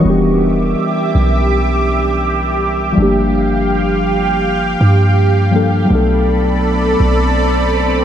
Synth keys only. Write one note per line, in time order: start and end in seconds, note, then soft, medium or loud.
0.00 2.91 E3 medium
0.00 2.92 G3 medium
0.00 0.23 C#4 soft
0.00 0.23 A#4 medium
0.05 2.93 B3 medium
0.05 2.95 D4 medium
0.10 2.96 G4 medium
2.93 5.47 F3 medium
2.93 5.48 G3 medium
2.97 3.04 A3 medium
2.97 5.51 D4 medium
3.02 5.52 A#3 medium
3.02 5.52 G4 medium
5.51 5.89 F3 medium
5.51 5.89 G3 soft
5.51 5.90 A#3 soft
5.51 5.91 D4 soft
5.56 5.91 A4 medium
5.85 8.04 F#3 medium
5.85 8.04 A3 medium
5.90 8.04 B3 medium
5.90 8.04 D4 medium
5.95 8.04 A4 medium